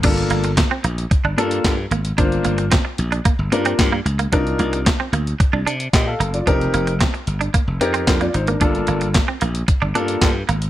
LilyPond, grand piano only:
\new Staff \with { instrumentName = "Grand piano" } { \time 4/4 \key g \minor \tempo 4 = 112 << { r1 | r1 | r2. <g' ees''>16 <a' f''>8 <f' d''>16~ | <f' d''>16 r2 r8. <d' bes'>16 <f' d''>16 <ees' c''>16 <d' bes'>16~ |
<d' bes'>16 r2. r8. | } \\ { <bes d' f' a'>4 r4. <bes d' f' a'>8 r4 | <bes d' f' c''>4 r4. <bes d' f' bes'>8 r4 | <d' ees' f' bes'>4 r2. | <c' ees' g' bes'>4 r4. <c' ees' g' bes'>8 r4 |
<bes d' f' a'>4 r4. <bes d' f' a'>8 r4 | } >> }